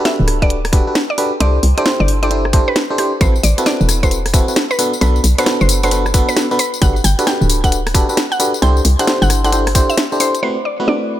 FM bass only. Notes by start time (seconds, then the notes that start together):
0.20 D1
1.40 C2
1.63 C2
2.00 G1
3.21 A1
3.44 A1
3.81 E1
5.01 B1
5.24 B1
5.61 F#1
6.82 G1
7.04 G1
7.41 D1
8.62 C2
8.85 C2
9.22 G1